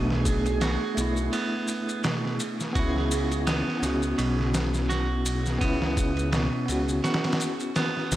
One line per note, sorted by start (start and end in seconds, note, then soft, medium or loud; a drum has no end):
0.00 0.78 B1 loud
0.00 0.24 B2 medium
0.00 0.95 A3 medium
0.00 0.98 B3 medium
0.00 0.95 D4 medium
0.00 1.01 E4 medium
0.00 8.16 G#4 medium
0.10 snare medium
0.25 kick medium
0.25 ride medium
0.25 maracas medium
0.46 ride soft
0.46 maracas medium
0.61 1.30 F#4 medium
0.61 snare loud
0.61 ride medium
0.61 maracas soft
0.95 1.29 B1 medium
0.95 2.71 A3 medium
0.95 2.72 B3 medium
0.95 ride medium
0.95 maracas medium
1.01 2.74 E4 medium
1.17 maracas soft
1.33 2.01 B3 medium
1.33 ride medium
1.33 maracas soft
1.68 ride medium
1.68 maracas medium
1.89 ride soft
1.89 maracas soft
2.04 2.38 B2 medium
2.04 snare loud
2.04 ride medium
2.04 maracas soft
2.25 snare soft
2.40 ride medium
2.40 maracas medium
2.60 snare soft
2.60 maracas soft
2.73 3.63 C#2 loud
2.73 3.78 B3 medium
2.73 3.79 C#4 medium
2.73 3.44 F#4 medium
2.73 kick loud
2.73 ride medium
2.73 maracas soft
2.79 3.81 E4 medium
2.96 snare soft
3.11 ride medium
3.11 maracas medium
3.32 ride soft
3.32 maracas soft
3.47 4.15 B3 medium
3.47 snare loud
3.47 ride medium
3.47 maracas soft
3.68 snare soft
3.80 4.15 C#2 loud
3.80 5.56 B3 medium
3.80 5.58 C#4 medium
3.80 snare soft
3.80 ride medium
3.80 maracas medium
3.86 5.59 F#4 medium
4.03 maracas soft
4.18 5.59 B1 loud
4.18 4.52 B2 medium
4.18 ride medium
4.18 maracas soft
4.39 snare soft
4.54 snare loud
4.54 ride medium
4.54 maracas medium
4.74 snare soft
4.74 maracas soft
4.89 5.58 F#4 medium
4.89 snare soft
4.89 ride medium
4.89 maracas soft
5.26 ride medium
5.26 maracas medium
5.46 snare soft
5.46 maracas soft
5.58 6.49 C#2 loud
5.58 6.63 B3 medium
5.58 6.29 B3 medium
5.58 6.65 C#4 medium
5.58 kick loud
5.58 ride medium
5.58 maracas soft
5.65 6.66 E4 loud
5.82 snare medium
5.97 kick medium
5.97 ride medium
5.97 maracas medium
6.17 ride soft
6.17 maracas medium
6.32 6.67 B2 loud
6.32 snare loud
6.32 ride medium
6.32 maracas soft
6.66 7.01 C#2 medium
6.66 8.16 B3 medium
6.66 8.16 C#4 medium
6.66 ride medium
6.66 maracas medium
6.72 8.16 F#4 medium
6.89 maracas soft
7.04 7.72 F#4 medium
7.04 snare medium
7.04 ride medium
7.04 maracas soft
7.14 snare medium
7.14 ride medium
7.24 snare medium
7.24 ride medium
7.33 snare medium
7.33 ride medium
7.40 ride medium
7.40 maracas medium
7.60 ride soft
7.60 maracas soft
7.76 8.16 B3 medium
7.76 snare loud
7.76 ride medium
7.76 maracas soft
7.97 snare soft
8.12 8.16 B1 medium
8.12 snare medium
8.12 ride medium
8.12 maracas medium